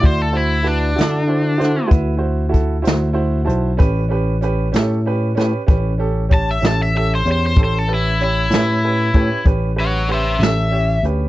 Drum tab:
HH |x-xx-xx-xx-x|x-xx-xx-xx-x|x-xx-xx-xx-x|
SD |---o-o---o--|---o-o---o--|---o-----o--|
BD |o-----o-o---|o-----o-o---|o----oo-----|